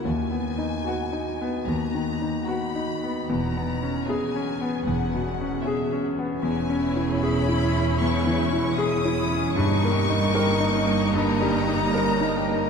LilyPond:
<<
  \new Staff \with { instrumentName = "Violin section" } { \time 4/4 \key cis \dorian \tempo 4 = 76 gis''2 ais''4 b''4 | ais''4 gis''4 fis''4 e''8 r8 | \key dis \phrygian gis''4 b''4 cis'''4 dis'''4 | cis'''2 ais''2 | }
  \new Staff \with { instrumentName = "Violin section" } { \time 4/4 \key cis \dorian << { r4 b'4 r4 b'4 | r4 cis''4 r4 cis''4 | \key dis \phrygian cis''1 | dis''1 | } \\ { r4 fis'8. r4 r16 fis'8. r16 | r4 gis'8. r4 r16 gis'8. r16 | gis16 cis'16 e'16 gis'16 e'16 cis'16 gis16 cis'16 e'16 gis'16 e'16 cis'16 gis16 cis'16 e'16 gis'16 | cis'16 dis'16 g'16 ais'16 g'16 dis'16 cis'16 dis'16 g'16 ais'16 g'16 dis'16 cis'16 dis'16 g'16 ais'16 | } >> }
  \new Staff \with { instrumentName = "Viola section" } { \time 4/4 \key cis \dorian r4 <b fis'>4 r4 <b fis'>4 | r4 <b e'>4 r4 <b e'>4 | \key dis \phrygian <cis' e'>1 | <ais dis'>1 | }
  \new Staff \with { instrumentName = "Grand piano" } { \time 4/4 \key cis \dorian \tuplet 3/2 { dis,8 b8 dis'8 fis'8 dis'8 b8 dis,8 dis8 dis'8 fis'8 dis'8 b8 } | \tuplet 3/2 { e,8 b8 cis'8 gis'8 cis'8 b8 e,8 b,8 cis'8 gis'8 cis'8 b8 } | \key dis \phrygian \tuplet 3/2 { e,8 cis'8 e'8 gis'8 e'8 cis'8 e,8 e8 e'8 gis'8 e'8 cis'8 } | \tuplet 3/2 { g,8 ais8 dis'8 ais'8 dis'8 ais8 g,8 g8 dis'8 ais'8 dis'8 ais8 } | }
  \new Staff \with { instrumentName = "Cello section" } { \clef bass \time 4/4 \key cis \dorian dis,4 r4 dis,4 r4 | e,4 r4 e,4 r4 | \key dis \phrygian e,1 | g,1 | }
  \new Staff \with { instrumentName = "Double bass section" } { \clef bass \time 4/4 \key cis \dorian dis,4 r4 dis,4 r4 | e,,4 r4 e,,4 r4 | \key dis \phrygian e,,1 | g,,1 | }
>>